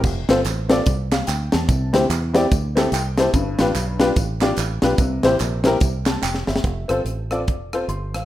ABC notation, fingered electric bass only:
X:1
M:4/4
L:1/8
Q:"Swing" 1/4=145
K:F
V:1 name="Fingered electric bass" clef=bass
F,,, G,,, A,,,2 C,,2 D,, E,, | C,, D,, E,,2 D,,2 C,,2 | G,,, A,,, =B,,,2 A,,,2 A,,, B,,, | C,, A,,, B,,,2 C,,2 F,,, G,,, |
F,,, G,,, A,,,2 F,,,2 G,,, A,,, |]